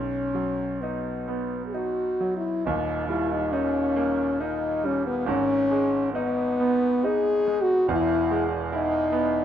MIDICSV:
0, 0, Header, 1, 3, 480
1, 0, Start_track
1, 0, Tempo, 967742
1, 408, Tempo, 916031
1, 1368, Tempo, 868307
1, 1369, Time_signature, 3, 2, 24, 8
1, 3288, Tempo, 921659
1, 3768, Tempo, 833333
1, 4728, Tempo, 783290
1, 5175, End_track
2, 0, Start_track
2, 0, Title_t, "French horn"
2, 0, Program_c, 0, 60
2, 0, Note_on_c, 0, 61, 67
2, 401, Note_on_c, 0, 59, 49
2, 409, Note_off_c, 0, 61, 0
2, 844, Note_off_c, 0, 59, 0
2, 848, Note_on_c, 0, 68, 45
2, 886, Note_on_c, 0, 66, 64
2, 894, Note_off_c, 0, 68, 0
2, 1212, Note_off_c, 0, 66, 0
2, 1216, Note_on_c, 0, 64, 69
2, 1368, Note_on_c, 0, 63, 76
2, 1376, Note_off_c, 0, 64, 0
2, 1606, Note_off_c, 0, 63, 0
2, 1609, Note_on_c, 0, 64, 76
2, 1735, Note_on_c, 0, 63, 74
2, 1744, Note_off_c, 0, 64, 0
2, 1850, Note_on_c, 0, 61, 80
2, 1858, Note_off_c, 0, 63, 0
2, 2335, Note_on_c, 0, 63, 80
2, 2343, Note_off_c, 0, 61, 0
2, 2583, Note_on_c, 0, 61, 77
2, 2591, Note_off_c, 0, 63, 0
2, 2698, Note_off_c, 0, 61, 0
2, 2701, Note_on_c, 0, 59, 71
2, 2815, Note_off_c, 0, 59, 0
2, 2819, Note_on_c, 0, 61, 83
2, 3282, Note_off_c, 0, 61, 0
2, 3291, Note_on_c, 0, 59, 77
2, 3769, Note_on_c, 0, 68, 89
2, 3777, Note_off_c, 0, 59, 0
2, 4094, Note_on_c, 0, 66, 85
2, 4103, Note_off_c, 0, 68, 0
2, 4255, Note_off_c, 0, 66, 0
2, 4260, Note_on_c, 0, 64, 86
2, 4582, Note_off_c, 0, 64, 0
2, 4736, Note_on_c, 0, 63, 87
2, 5175, Note_off_c, 0, 63, 0
2, 5175, End_track
3, 0, Start_track
3, 0, Title_t, "Grand piano"
3, 0, Program_c, 1, 0
3, 0, Note_on_c, 1, 35, 43
3, 40, Control_c, 1, 64, 127
3, 172, Note_on_c, 1, 54, 36
3, 411, Note_on_c, 1, 63, 37
3, 555, Note_off_c, 1, 54, 0
3, 647, Note_on_c, 1, 59, 33
3, 794, Note_off_c, 1, 63, 0
3, 889, Note_on_c, 1, 63, 34
3, 1031, Note_off_c, 1, 59, 0
3, 1132, Note_on_c, 1, 54, 34
3, 1277, Note_off_c, 1, 63, 0
3, 1350, Note_off_c, 1, 35, 0
3, 1369, Note_off_c, 1, 54, 0
3, 1369, Note_on_c, 1, 27, 52
3, 1374, Note_on_c, 1, 39, 57
3, 1379, Control_c, 1, 64, 0
3, 1474, Control_c, 1, 64, 127
3, 1608, Note_on_c, 1, 55, 43
3, 1850, Note_on_c, 1, 63, 48
3, 1988, Note_off_c, 1, 55, 0
3, 2090, Note_on_c, 1, 58, 44
3, 2233, Note_off_c, 1, 63, 0
3, 2335, Note_on_c, 1, 63, 43
3, 2477, Note_off_c, 1, 58, 0
3, 2574, Note_on_c, 1, 55, 42
3, 2720, Note_off_c, 1, 63, 0
3, 2791, Note_off_c, 1, 27, 0
3, 2793, Note_off_c, 1, 39, 0
3, 2811, Note_on_c, 1, 32, 52
3, 2814, Note_off_c, 1, 55, 0
3, 2817, Note_on_c, 1, 44, 56
3, 2823, Control_c, 1, 64, 0
3, 2921, Control_c, 1, 64, 127
3, 3059, Note_on_c, 1, 56, 43
3, 3300, Note_on_c, 1, 63, 49
3, 3433, Note_off_c, 1, 56, 0
3, 3533, Note_on_c, 1, 59, 43
3, 3681, Note_off_c, 1, 63, 0
3, 3765, Note_on_c, 1, 63, 45
3, 3922, Note_off_c, 1, 59, 0
3, 4012, Note_on_c, 1, 56, 42
3, 4157, Note_off_c, 1, 63, 0
3, 4232, Note_off_c, 1, 32, 0
3, 4235, Note_off_c, 1, 44, 0
3, 4246, Note_on_c, 1, 28, 56
3, 4249, Note_on_c, 1, 40, 56
3, 4254, Note_off_c, 1, 56, 0
3, 4264, Control_c, 1, 64, 0
3, 4347, Control_c, 1, 64, 127
3, 4495, Note_on_c, 1, 56, 45
3, 4733, Note_on_c, 1, 64, 52
3, 4874, Note_off_c, 1, 56, 0
3, 4976, Note_on_c, 1, 59, 47
3, 5115, Note_off_c, 1, 64, 0
3, 5175, Note_off_c, 1, 28, 0
3, 5175, Note_off_c, 1, 40, 0
3, 5175, Note_off_c, 1, 59, 0
3, 5175, End_track
0, 0, End_of_file